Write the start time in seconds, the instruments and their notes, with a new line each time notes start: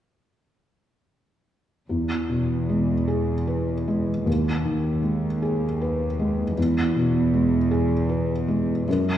1.89 felt piano E2, cello section E2
2.30 felt piano B2
2.69 felt piano G#3
3.08 felt piano G#4
3.47 felt piano B4
3.88 felt piano G#3
4.26 cello section D#2, felt piano D#2
4.65 felt piano D#3
5.02 felt piano G#3
5.42 felt piano G#4
5.81 felt piano B4
6.19 felt piano G#3
6.57 cello section E2, felt piano E2
6.96 felt piano B2
7.34 felt piano G#3
7.71 felt piano G#4
8.09 felt piano B4
8.48 felt piano G#3
8.87 cello section F#2, felt piano F#2